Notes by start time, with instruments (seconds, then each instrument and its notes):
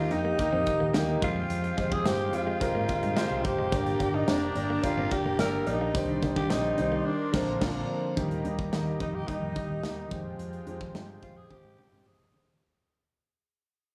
Already playing: fingered electric bass D#2, grand piano A#3 D#4 G4, alto saxophone F4, analog synth pad G4 D#5 A#5
0.11 fingered electric bass F2, grand piano A#3 D#4 G4, alto saxophone D#4, muted clean electric guitar stroke, closed hi-hat, tambourine
0.25 clean electric guitar A#3
0.38 grand piano A#3 D#4 G4, kick, closed hi-hat, tambourine
0.53 fingered electric bass F2, clean electric guitar C4
0.66 grand piano A#3 D#4 G4, muted clean electric guitar stroke, kick, closed hi-hat, tambourine
0.80 fingered electric bass D#2, clean electric guitar A#3
0.93 fingered electric bass D#2, clean electric guitar G3, grand piano A#3 D#4 G4, snare, closed hi-hat, tambourine
1.21 fingered electric bass F2, grand piano G#3 C4 F4 G4 C5, alto saxophone F4, muted clean electric guitar stroke, kick, closed hi-hat
1.36 clean electric guitar G#3
1.50 fingered electric bass F2, closed hi-hat
1.64 muted clean electric guitar stroke, closed hi-hat
1.77 fingered electric bass F2, grand piano G#3 C4 F4 G4 C5, clean electric guitar G#3, kick, closed hi-hat, tambourine
1.92 clean electric guitar C4, alto saxophone G#4, kick
2.04 fingered electric bass G2, grand piano G#3 C4 F4 G4 C5, clean electric guitar A#3, alto saxophone G4, snare, closed hi-hat, tambourine
2.32 fingered electric bass F2, grand piano G#3 C4 F4 G4 C5, alto saxophone F4, muted clean electric guitar stroke, closed hi-hat, tambourine
2.47 clean electric guitar G#3
2.60 grand piano G#3 C4 F4 G4 A#4, kick, closed hi-hat, tambourine
2.75 fingered electric bass G#2, clean electric guitar A#3
2.88 grand piano G#3 C4 F4 G4 C5, muted clean electric guitar stroke, kick, closed hi-hat, tambourine
3.03 fingered electric bass G2, clean electric guitar G#3, closed hi-hat
3.16 clean electric guitar G3, grand piano G#3 C4 F4 G4 C5, snare, closed hi-hat, tambourine
3.30 fingered electric bass C2
3.43 fingered electric bass G1, grand piano G#3 C4 F4 G4 C5, alto saxophone G4, muted clean electric guitar stroke, kick, closed hi-hat
3.58 fingered electric bass F1, clean electric guitar G#3
3.71 fingered electric bass G1, grand piano A#3 D4 G4, analog synth pad G4 D5 A#5, kick, closed hi-hat, tambourine
3.86 muted clean electric guitar stroke, closed hi-hat
3.99 fingered electric bass G1, grand piano A#3 D4 G4, clean electric guitar A#3, kick, closed hi-hat, tambourine
4.14 clean electric guitar D4, alto saxophone D#4
4.27 fingered electric bass F1, grand piano A#3 D4 G4, clean electric guitar C4, alto saxophone D4, snare, closed hi-hat, tambourine
4.55 fingered electric bass G1, grand piano A#3 D4 G4, muted clean electric guitar stroke, closed hi-hat, tambourine
4.70 clean electric guitar A#3
4.82 grand piano A#3 D4 G4, alto saxophone F4, kick, closed hi-hat, tambourine
4.97 fingered electric bass G1, clean electric guitar C4
5.10 grand piano A#3 D4 F4, alto saxophone G4, muted clean electric guitar stroke, kick, closed hi-hat, tambourine
5.25 fingered electric bass F1, clean electric guitar A#3
5.38 fingered electric bass G1, clean electric guitar G3, grand piano A#3 D4 G4, alto saxophone A#4, snare, closed hi-hat, tambourine
5.66 fingered electric bass A#1, grand piano A#3 D4 G4, alto saxophone D#4, muted clean electric guitar stroke, closed hi-hat, tambourine
5.81 clean electric guitar A#3
5.94 fingered electric bass C2, grand piano D#3 G3 C4 D4 G4, analog synth pad D#4 D5 C6, kick, closed hi-hat, tambourine
6.09 muted clean electric guitar stroke
6.22 fingered electric bass C2, grand piano D#3 G3 C4 D4 G4, clean electric guitar A#3, kick, closed hi-hat, tambourine
6.36 clean electric guitar D4, alto saxophone G4, kick
6.50 fingered electric bass A#1, grand piano D#3 G3 C4 D4 G4, clean electric guitar C4, alto saxophone D#4, snare, closed hi-hat, tambourine
6.77 fingered electric bass C2, grand piano D#3 G3 C4 D4 G4, muted clean electric guitar stroke, closed hi-hat, tambourine
6.92 clean electric guitar A#3
7.05 alto saxophone D4, analog synth pad A#4
7.32 fingered electric bass A#1, grand piano D3 F3 A#3 C4 F4, kick, snare, crash
7.60 fingered electric bass A#1, grand piano D3 F3 A#3 C4 F4, kick, snare, crash
8.16 fingered electric bass D#2, grand piano D#3 G3 A#3 G4, analog synth pad G4 D#5 A#5, kick, closed hi-hat
8.31 closed hi-hat
8.44 fingered electric bass D#2, grand piano D#3 G3 A#3 G4, closed hi-hat
8.59 kick
8.71 fingered electric bass D#2, grand piano D#3 G3 A#3 G4, snare, closed hi-hat
9.00 fingered electric bass F2, grand piano D#3 G3 A#3 A#4, alto saxophone D#4, kick, closed hi-hat
9.15 alto saxophone G4
9.27 grand piano D#3 G3 A#3 G4, alto saxophone D#4, kick, closed hi-hat
9.42 fingered electric bass F2
9.55 grand piano D#3 G3 A#3 G4, kick, closed hi-hat
9.70 fingered electric bass D#2
9.83 fingered electric bass D#2, grand piano D#3 G3 A#3 G4, alto saxophone D#4, snare, closed hi-hat
10.11 fingered electric bass F2, grand piano F3 G#3 C4 G4, analog synth pad G#3 F4 G5, kick, closed hi-hat
10.39 fingered electric bass F2, closed hi-hat
10.53 closed hi-hat
10.66 fingered electric bass F2, grand piano F3 G#3 C4 G4, closed hi-hat
10.81 kick
10.94 fingered electric bass G2, grand piano F3 G#3 C4 G4, snare, closed hi-hat
11.22 fingered electric bass F2, grand piano F3 G#3 C4 G4, alto saxophone F4, kick, closed hi-hat
11.37 alto saxophone G#4
11.49 grand piano F3 G#3 C4 G4, alto saxophone G4, kick, high tom
11.64 fingered electric bass G#2
11.78 grand piano F3 G#3 C4 G4, mid tom
11.92 fingered electric bass G2, mid tom
12.06 grand piano F3 G#3 C4 G4, alto saxophone G#4, mid tom
12.20 fingered electric bass C2
12.33 fingered electric bass D2, grand piano F3 G#3 C4 G4, floor tom
12.47 fingered electric bass D#2, floor tom